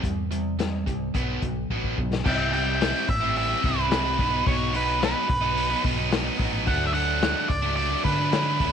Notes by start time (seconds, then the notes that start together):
0.03 E2 C3 G3, kick, closed hi-hat
0.31 C3 G3, closed hi-hat
0.59 C3 G3, snare, closed hi-hat
0.86 C2 C3 G3, kick, closed hi-hat
1.14 B1 B2 F#3 B3, kick, closed hi-hat
1.42 B1 B2 F#3, kick, closed hi-hat
1.70 A1 B2 F#3 B3, kick
1.84 kick
1.98 B1 B2 F#3, kick
2.13 snare
2.24 C2 C3 G3 C4 E4 G5, kick, crash
2.52 C3 G3 C4 E4 G5, open hi-hat
2.80 C3 G3 C4 E4, snare, open hi-hat
3.08 A1 E5, muted overdriven electric guitar stroke, kick, open hi-hat
3.21 G3 C4 E4
3.36 E5, open hi-hat
3.48 G3 C4 E4
3.62 C2 C3 G3 C4 E4, kick, open hi-hat
3.66 B4
3.76 G3 C4 E4
3.89 C3 G3 C4 E4, snare, open hi-hat
4.03 G3 C4 E4
4.18 B1 B2 F#3 B3 D#4, kick, open hi-hat
4.30 F#3 B3 D#4
4.45 B1 B2 F#3 B3 D#4 C#5, kick, open hi-hat
4.72 B2 F#3 B3 D#4 B4, open hi-hat
5.00 B2 F#3 B3 D#4, snare, open hi-hat
5.04 B4
5.28 B1, muted overdriven electric guitar stroke, kick, open hi-hat
5.41 F#3 B3 D#4
5.57 open hi-hat
5.69 F#3 B3 D#4
5.82 B1 B2 F#3 B3 D#4, kick, open hi-hat
5.97 F#3 B3 D#4
6.10 B2 F#3 B3 D#4, snare, open hi-hat
6.24 F#3 B3 D#4
6.38 A1 B2 F#3 B3 D#4, kick, open hi-hat
6.51 F#3 B3 D#4
6.64 D2 D3 F#3 A3 D4 F#5, kick, open hi-hat
6.87 E5
6.92 D3 F#3 A3 D4 F#5, open hi-hat
7.21 D3 F#3 A3 D4, snare, open hi-hat
7.49 C#2 D5, muted overdriven electric guitar stroke, kick, open hi-hat
7.62 F#3 A3 D4
7.76 D5, open hi-hat
7.90 F#3 A3 D4
8.04 D3 F#3 A3 D4 B4, kick, open hi-hat
8.18 F#3 A3 D4
8.31 D3 F#3 A3 D4, snare, open hi-hat
8.45 F#3 A3 D4
8.58 D2 D3 F#3 A3 D4, kick, open hi-hat